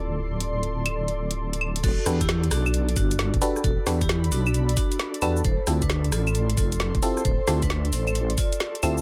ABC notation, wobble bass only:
X:1
M:4/4
L:1/16
Q:"Swing 16ths" 1/4=133
K:Ephr
V:1 name="Wobble bass" clef=bass
D,,,16 | E,,, z E,,4 B,,,4 G,,,3 E,,, z2 | E,,, z E,,4 B,,,4 z4 E,,2 | D,,, z D,,4 A,,,4 F,,,3 D,,, z2 |
D,,, z D,,4 A,,,4 z4 D,,2 |]